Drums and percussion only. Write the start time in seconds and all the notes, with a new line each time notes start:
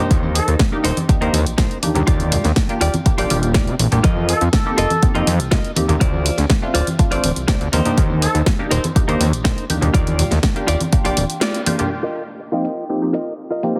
0.10 kick, closed hi-hat, tambourine
0.23 tambourine, high conga
0.35 open hi-hat, tambourine
0.48 closed hi-hat, tambourine
0.59 kick, snare, closed hi-hat, tambourine, high conga
0.73 tambourine
0.84 open hi-hat, tambourine
0.96 closed hi-hat, tambourine, high conga
1.09 kick, closed hi-hat, tambourine
1.21 closed hi-hat, tambourine
1.33 open hi-hat, tambourine, high conga
1.46 closed hi-hat, tambourine
1.58 kick, snare, closed hi-hat
1.70 closed hi-hat, tambourine
1.82 open hi-hat, tambourine, high conga
1.95 closed hi-hat, tambourine, low conga
2.07 kick, closed hi-hat, tambourine
2.19 closed hi-hat, tambourine, high conga
2.32 open hi-hat, tambourine, low conga
2.44 snare, closed hi-hat, tambourine
2.56 kick, snare, closed hi-hat, tambourine, high conga
2.69 closed hi-hat, tambourine
2.81 open hi-hat, tambourine
2.93 closed hi-hat, tambourine, high conga
3.05 kick, closed hi-hat, tambourine
3.18 open hi-hat, tambourine
3.30 open hi-hat, tambourine, high conga
3.43 closed hi-hat, tambourine
3.54 kick, snare, closed hi-hat
3.67 closed hi-hat, tambourine
3.79 open hi-hat, tambourine, high conga
3.92 closed hi-hat, tambourine, low conga
4.04 kick, closed hi-hat, tambourine
4.17 tambourine, high conga
4.29 open hi-hat, tambourine
4.41 closed hi-hat, tambourine
4.53 kick, snare, closed hi-hat, tambourine, high conga
4.66 tambourine
4.78 open hi-hat, tambourine
4.90 closed hi-hat, tambourine, high conga
5.03 kick, closed hi-hat, tambourine
5.15 closed hi-hat, tambourine
5.27 open hi-hat, tambourine, high conga
5.40 closed hi-hat, tambourine
5.51 kick, snare, closed hi-hat, tambourine
5.65 closed hi-hat, tambourine
5.75 open hi-hat, tambourine, high conga
5.89 closed hi-hat, tambourine, low conga
6.01 kick, closed hi-hat, tambourine
6.13 tambourine, high conga
6.26 open hi-hat, tambourine
6.37 snare, closed hi-hat, tambourine
6.49 kick, snare, closed hi-hat, tambourine, high conga
6.63 tambourine
6.75 open hi-hat, tambourine
6.87 closed hi-hat, tambourine, high conga
6.99 kick, closed hi-hat, tambourine
7.12 open hi-hat, tambourine
7.24 open hi-hat, tambourine, high conga
7.36 closed hi-hat, tambourine
7.48 kick, snare, closed hi-hat, tambourine
7.61 closed hi-hat, tambourine
7.73 open hi-hat, tambourine, high conga
7.85 closed hi-hat, tambourine, low conga
7.97 kick, closed hi-hat, tambourine
8.10 tambourine, high conga
8.22 open hi-hat, tambourine
8.34 closed hi-hat, tambourine
8.46 kick, snare, closed hi-hat, tambourine, high conga
8.59 tambourine
8.71 open hi-hat, tambourine
8.84 closed hi-hat, tambourine, high conga
8.96 kick, closed hi-hat, tambourine
9.08 closed hi-hat, tambourine
9.21 open hi-hat, tambourine, high conga
9.33 closed hi-hat, tambourine
9.45 kick, snare, closed hi-hat
9.58 closed hi-hat, tambourine
9.70 open hi-hat, tambourine, high conga
9.81 closed hi-hat, tambourine, low conga
9.94 kick, closed hi-hat, tambourine
10.07 closed hi-hat, tambourine, high conga
10.19 open hi-hat, tambourine, low conga
10.30 snare, closed hi-hat, tambourine
10.43 kick, snare, closed hi-hat, tambourine, high conga
10.56 closed hi-hat, tambourine
10.68 open hi-hat, tambourine
10.80 closed hi-hat, tambourine, high conga
10.93 kick, closed hi-hat, tambourine
11.05 open hi-hat
11.17 open hi-hat, tambourine, high conga
11.30 closed hi-hat, tambourine
11.41 snare, closed hi-hat, tambourine
11.54 closed hi-hat, tambourine
11.66 open hi-hat, tambourine, high conga
11.79 closed hi-hat, tambourine, low conga
12.16 open hi-hat
12.65 open hi-hat
13.14 open hi-hat
13.63 open hi-hat